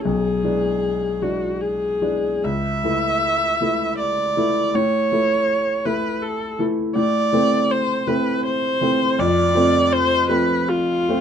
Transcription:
0.05 0.43 B1 soft
0.05 1.23 G#4 medium
0.44 1.18 E3 soft
0.44 1.18 G#3 soft
0.44 1.18 D4 soft
1.22 1.98 E3 soft
1.22 1.98 G#3 soft
1.22 1.98 D4 soft
1.22 1.62 F#4 medium
1.60 2.46 G#4 medium
2.01 2.40 E3 soft
2.01 2.41 G#3 soft
2.01 2.41 D4 soft
2.44 2.83 C#2 soft
2.44 3.98 E5 medium
2.84 3.57 E3 soft
2.84 3.57 A3 soft
2.84 3.57 E4 soft
3.61 4.34 E3 soft
3.61 4.34 A3 soft
3.61 4.34 E4 soft
3.99 4.76 D5 medium
4.37 4.71 E3 soft
4.37 4.71 A3 soft
4.37 4.71 E4 soft
4.75 5.11 A2 medium
4.75 5.87 C#5 medium
5.12 5.82 E3 soft
5.12 5.82 A3 soft
5.12 5.82 E4 soft
5.85 6.55 E3 soft
5.85 6.55 A3 soft
5.85 6.55 E4 soft
5.85 6.23 B4 medium
6.22 6.59 A4 medium
6.59 6.92 E3 soft
6.59 6.93 A3 soft
6.59 6.93 E4 soft
6.95 7.32 A2 medium
6.95 7.73 D5 medium
7.33 8.03 E3 soft
7.33 8.03 A3 soft
7.33 8.04 C4 soft
7.71 8.09 C5 medium
8.07 8.78 E3 soft
8.07 8.78 A3 soft
8.07 8.78 C4 soft
8.07 8.45 B4 medium
8.46 9.21 C5 medium
8.81 9.15 E3 soft
8.81 9.15 A3 soft
8.81 9.15 C4 soft
9.19 9.54 F2 medium
9.19 9.94 D5 medium
9.55 10.25 F3 soft
9.55 10.26 A3 soft
9.55 10.26 C4 medium
9.93 10.29 C5 medium
10.29 11.05 F3 soft
10.29 11.05 A3 soft
10.29 11.05 C4 soft
10.29 10.70 B4 medium
10.68 11.21 F4 medium
11.09 11.21 F3 soft
11.09 11.21 A3 soft
11.09 11.21 C4 medium

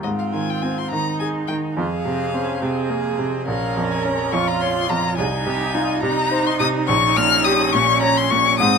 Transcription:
0.03 1.73 G#2 soft
0.03 0.93 C4 soft
0.03 0.94 F4 medium
0.03 0.09 D#5 medium
0.19 0.25 F5 medium
0.33 0.80 D#3 soft
0.33 0.51 G#5 medium
0.50 0.64 G5 medium
0.62 1.09 C4 soft
0.62 0.80 G#5 medium
0.78 0.90 C6 medium
0.91 1.38 D#3 soft
0.91 1.77 D#4 soft
0.91 1.78 D#4 soft
0.91 1.19 A#5 medium
1.20 1.66 G#4 soft
1.20 1.28 G#5 medium
1.48 1.77 D#3 soft
1.48 1.56 G5 medium
1.76 3.43 F2 soft
1.76 1.86 F4 soft
1.76 2.61 G#4 medium
1.76 3.15 F5 medium
2.05 2.51 C3 soft
2.05 2.33 C4 soft
2.33 2.79 C4 soft
2.33 2.64 C#4 medium
2.62 3.07 C3 soft
2.62 2.91 C4 medium
2.62 3.46 G#4 medium
2.90 3.20 A#3 medium
2.90 3.36 G#4 soft
3.19 3.47 C3 soft
3.19 3.47 C4 medium
3.46 5.14 A#1 soft
3.46 4.35 C#4 medium
3.46 4.34 A#4 medium
3.46 3.87 F5 medium
3.77 4.22 F2 soft
3.91 4.05 G#5 medium
4.03 4.50 C#4 soft
4.03 4.33 A#5 medium
4.32 4.78 F2 soft
4.32 5.17 F4 medium
4.32 5.18 F4 medium
4.32 4.49 C#6 medium
4.48 4.62 A#5 medium
4.61 5.07 C#5 medium
4.61 4.91 C6 medium
4.89 5.18 F2 soft
4.89 5.17 A#5 medium
5.17 6.84 C2 medium
5.17 6.01 D#4 medium
5.17 5.26 G#4 medium
5.17 6.01 G#5 medium
5.46 5.92 C3 soft
5.46 5.76 G4 medium
5.75 6.20 D#4 medium
5.75 6.03 F4 medium
6.02 6.48 C3 medium
6.02 6.86 D#4 medium
6.02 7.75 D#4 medium
6.02 6.48 A#5 loud
6.31 6.77 C5 medium
6.46 6.59 C6 medium
6.59 6.88 C3 medium
6.59 6.67 D#6 loud
6.87 8.56 A#1 medium
6.87 8.55 C#4 medium
6.87 7.18 C#6 loud
7.17 7.62 A#2 medium
7.17 7.46 F6 loud
7.44 7.91 G4 medium
7.44 7.74 D#6 loud
7.72 8.19 A#2 medium
7.72 8.59 C#4 medium
7.72 8.01 C#6 loud
8.02 8.48 C#5 medium
8.02 8.19 A#5 loud
8.17 8.32 C6 loud
8.30 8.60 A#2 medium
8.30 8.59 C#6 loud
8.59 8.78 G#2 medium
8.59 8.78 C4 medium
8.59 8.78 C4 loud
8.59 8.78 D#6 loud

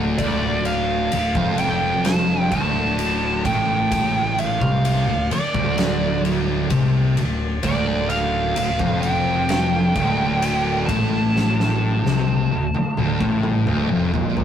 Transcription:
0.00 0.15 D1 medium
0.00 0.17 D2 loud
0.18 1.08 D1 medium
0.18 1.11 D2 loud
0.18 0.66 D5 medium
0.18 kick loud
0.18 ride medium
0.65 1.59 F5 medium
0.65 ride medium
1.12 1.34 D1 medium
1.12 1.35 D2 medium
1.12 ride medium
1.35 2.48 F1 medium
1.35 2.50 F2 medium
1.35 kick loud
1.58 2.05 G5 medium
1.58 ride medium
2.05 2.48 A5 loud
2.05 snare loud
2.05 ride medium
2.52 3.41 D1 medium
2.52 3.43 D2 medium
2.52 3.45 A5 loud
2.52 kick loud
2.52 ride medium
2.99 ride medium
3.45 4.58 A1 medium
3.45 4.60 A2 loud
3.45 4.41 G5 loud
3.45 kick loud
3.45 ride medium
3.92 kick loud
3.92 ride medium
4.38 5.28 F5 medium
4.38 ride medium
4.61 5.05 C2 medium
4.61 5.06 C3 loud
4.61 kick loud
4.85 ride medium
5.08 5.29 D1 medium
5.08 5.30 D2 medium
5.31 6.21 D5 medium
5.31 muted fingered electric bass stroke soft
5.31 muted distorted electric guitar stroke medium
5.31 ride medium
5.55 6.67 D1 medium
5.55 6.69 D2 loud
5.55 kick loud
5.78 snare loud
5.78 ride medium
6.25 ride medium
6.70 7.14 C2 medium
6.70 7.16 C3 medium
6.70 kick loud
6.70 ride medium
7.17 7.61 D1 medium
7.17 7.55 D2 medium
7.17 ride medium
7.63 8.53 D1 medium
7.63 8.55 D2 loud
7.63 8.10 D5 medium
7.63 kick loud
7.63 ride medium
8.10 8.99 F5 medium
8.10 ride medium
8.56 8.78 D1 medium
8.56 8.79 D2 medium
8.56 ride medium
8.79 9.92 F1 medium
8.79 9.95 F2 medium
8.79 kick loud
9.01 10.94 G5 loud
9.01 ride medium
9.49 snare loud
9.49 ride medium
9.95 10.85 D1 medium
9.95 10.87 D2 loud
9.95 kick loud
9.95 ride medium
10.42 ride medium
10.86 12.01 A1 medium
10.86 12.03 A2 loud
10.86 14.44 A5 loud
10.86 kick loud
10.86 ride medium
11.37 snare medium
11.60 snare medium
12.04 12.49 C2 medium
12.04 12.49 C3 loud
12.04 snare medium
12.28 high tom medium
12.51 12.73 D1 medium
12.51 12.74 D2 medium
12.74 muted distorted electric guitar stroke medium
12.74 muted fingered electric bass stroke soft
12.74 high tom medium
12.97 13.19 D1 medium
12.97 13.20 D2 loud
12.97 mid tom medium
13.20 13.64 A1 loud
13.20 13.66 A2 loud
13.20 kick loud
13.43 mid tom medium
13.67 13.89 D1 medium
13.67 13.89 D2 loud
13.67 mid tom medium
13.89 14.11 F1 medium
13.89 14.12 F2 loud
14.13 14.44 A#1 medium
14.13 14.44 A#2 loud
14.13 mid tom medium
14.37 floor tom medium

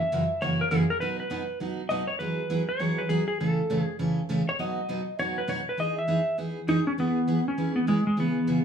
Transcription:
0.00 0.43 E5 loud
0.12 0.23 F#2 medium
0.12 0.23 C#3 medium
0.12 0.23 E3 medium
0.12 0.23 A#3 medium
0.12 0.23 C#4 medium
0.12 0.23 F#4 medium
0.41 0.61 F#2 medium
0.41 0.62 C#3 medium
0.41 0.62 E3 medium
0.41 0.62 A#3 medium
0.41 0.62 C#4 medium
0.41 0.62 F#4 medium
0.41 0.61 C#5 medium
0.61 0.71 A#4 medium
0.71 0.82 F#2 medium
0.71 0.82 C#3 medium
0.71 0.82 E3 medium
0.71 0.82 A#3 medium
0.71 0.83 C#4 medium
0.71 0.83 F#4 medium
0.71 0.90 G#4 medium
0.90 1.00 A#4 medium
1.00 1.21 B2 medium
1.00 1.21 F#3 medium
1.00 1.22 B3 medium
1.00 1.21 D#4 medium
1.00 1.22 F#4 medium
1.00 1.19 B4 medium
1.20 1.58 B4 medium
1.30 1.42 B2 medium
1.30 1.42 F#3 medium
1.30 1.42 B3 medium
1.30 1.42 D#4 medium
1.30 1.42 F#4 medium
1.60 1.81 B2 medium
1.60 1.81 F#3 medium
1.60 1.81 B3 medium
1.60 1.81 D#4 medium
1.60 1.81 F#4 medium
1.89 2.02 B2 medium
1.89 2.02 F#3 medium
1.89 2.02 B3 medium
1.89 2.02 D#4 medium
1.89 2.02 F#4 medium
1.89 2.07 D#5 medium
2.07 2.19 C#5 medium
2.19 2.40 E3 medium
2.19 2.40 F#3 medium
2.19 2.40 B3 medium
2.19 2.41 E4 medium
2.19 2.41 G#4 medium
2.19 2.70 B4 medium
2.50 2.61 E3 medium
2.50 2.61 F#3 medium
2.50 2.62 B3 medium
2.50 2.61 E4 medium
2.50 2.62 G#4 medium
2.69 3.00 C#5 medium
2.79 3.00 E3 medium
2.79 3.00 F#3 medium
2.79 3.00 B3 medium
2.79 3.00 E4 medium
2.79 3.00 G#4 medium
2.98 3.09 B4 medium
3.09 3.21 E3 medium
3.09 3.21 F#3 medium
3.09 3.21 B3 medium
3.09 3.21 E4 medium
3.09 3.26 G#4 medium
3.09 3.21 G#4 medium
3.28 3.40 G#4 medium
3.40 3.60 A2 medium
3.40 3.60 C#3 medium
3.40 3.60 E3 medium
3.40 3.60 A3 medium
3.40 3.61 C#4 medium
3.40 3.81 A4 medium
3.40 3.60 A4 medium
3.70 3.81 A2 medium
3.70 3.81 C#3 medium
3.70 3.81 E3 medium
3.70 3.81 A3 medium
3.70 3.81 C#4 medium
3.70 3.81 A4 medium
3.81 3.96 G#4 medium
3.99 4.19 A2 medium
3.99 4.20 C#3 medium
3.99 4.20 E3 medium
3.99 4.20 A3 medium
3.99 4.20 C#4 medium
3.99 4.20 A4 medium
4.29 4.40 A2 medium
4.29 4.41 C#3 medium
4.29 4.41 E3 medium
4.29 4.41 A3 medium
4.29 4.41 C#4 medium
4.29 4.41 A4 medium
4.49 4.60 C#5 medium
4.59 4.79 B2 medium
4.59 4.79 F#3 medium
4.59 4.79 B3 medium
4.59 4.80 D#4 medium
4.59 4.80 F#4 medium
4.59 5.16 D#5 medium
4.89 5.00 B2 medium
4.89 5.00 F#3 medium
4.89 5.01 B3 medium
4.89 5.00 D#4 medium
4.89 5.01 F#4 medium
5.19 5.39 B2 medium
5.19 5.39 F#3 medium
5.19 5.39 B3 medium
5.19 5.39 D#4 medium
5.19 5.39 F#4 medium
5.19 5.38 C#5 medium
5.38 5.49 B4 medium
5.48 5.59 B2 medium
5.48 5.60 F#3 medium
5.48 5.60 B3 medium
5.48 5.60 D#4 medium
5.48 5.60 F#4 medium
5.48 5.68 C#5 medium
5.69 5.80 B4 medium
5.77 5.98 E3 medium
5.77 5.99 B3 medium
5.77 5.99 D#4 medium
5.77 5.99 G#4 medium
5.77 5.98 D#5 loud
5.98 6.36 E5 loud
6.07 6.19 E3 medium
6.07 6.19 B3 medium
6.07 6.20 D#4 medium
6.07 6.20 G#4 medium
6.38 6.58 E3 soft
6.38 6.58 B3 medium
6.38 6.58 D#4 medium
6.38 6.59 G#4 medium
6.68 6.79 E3 medium
6.68 6.79 B3 medium
6.68 6.79 D#4 medium
6.68 6.87 D#4 medium
6.68 6.80 G#4 medium
6.87 6.92 C#4 medium
6.98 7.18 E3 medium
6.98 7.18 B3 medium
6.98 7.44 B3 medium
6.98 7.18 E4 medium
6.98 7.19 G#4 medium
7.27 7.39 E3 medium
7.27 7.39 B3 medium
7.27 7.39 E4 medium
7.27 7.39 G#4 medium
7.48 7.75 C#4 medium
7.58 7.78 E3 medium
7.58 7.78 B3 medium
7.58 7.78 E4 medium
7.58 7.78 G#4 medium
7.76 7.88 B3 medium
7.87 7.99 E3 medium
7.87 8.06 G#3 medium
7.87 7.99 B3 medium
7.87 7.99 E4 medium
7.87 7.99 G#4 medium
8.07 8.17 G#3 medium
8.17 8.37 C#3 medium
8.17 8.37 E3 medium
8.17 8.38 B3 medium
8.17 8.64 B3 medium
8.17 8.38 C#4 medium
8.17 8.38 G#4 medium
8.47 8.59 C#3 medium
8.47 8.59 E3 medium
8.47 8.59 B3 medium
8.47 8.59 C#4 medium
8.47 8.59 G#4 medium

